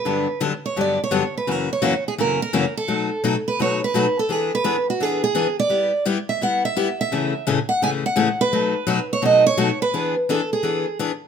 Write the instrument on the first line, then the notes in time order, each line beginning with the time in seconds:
steel-string acoustic guitar
Already playing: B4
0.05 G2 D3 F#3 B3 D4 G4
0.40 G2 D3 F#3 B3 D4 G4
0.66 C#5
0.76 G2 D3 F#3 B3 D4 G4
0.81 D5
1.04 C#5
1.11 G2 D3 F#3 B3 D4 G4
1.38 B4
1.47 F#2 C#3 E3 A#3 C#4 F#4
1.51 A#4
1.73 C#5
1.82 F#2 C#3 E3 A#3 C#4 F#4
2.08 G#4
2.18 F#2 C#3 E3 A#3 C#4 F#4 A#4
2.42 A#4
2.53 F#2 C#3 E3 A#3 C#4 F#4
2.77 A4
2.88 B2 F#3 A3 D#4 F#4
3.24 B2 F#3 A3 D#4 F#4
3.48 B4
3.59 B2 F#3 A3 D#4 F#4 C#5
3.84 B4
3.94 B2 F#3 A3 D#4 F#4
4.19 A4
4.29 E3 B3 D4 G#4
4.55 B4
4.64 E3 B3 D4 G#4
4.90 F#4
5.00 E3 B3 D4 G#4
5.24 G#4
5.35 E3 B3 D4 G#4
5.60 D5
5.69 G3 B3 E4 G4
6.05 G3 B3 E4 G4
6.29 E5
6.41 G3 B3 E4 G4 F#5
6.65 E5
6.76 G3 B3 E4 G4
7.01 E5
7.12 A2 C#3 E3 A3 C#4 G#4
7.47 A2 C#3 E3 A3 C#4 G#4
7.69 F#5
7.82 A2 C#3 E3 A3 C#4 G#4 G#5
8.06 F#5
8.16 A2 C#3 E3 A3 C#4 G#4
8.41 B4
8.52 B2 F#3 A3 D#4 F#4
8.87 B2 F#3 A3 D#4 F#4
9.13 C#5
9.22 B2 F#3 A3 D#4 F#4 D#5
9.47 C#5
9.57 B2 F#3 A3 D#4 F#4
9.82 B4
9.94 E3 B3 D4 G#4
10.29 E3 B3 D4 G#4 A4
10.53 G#4
10.63 E3 B3 D4 G#4
10.99 E3 B3 D4 G#4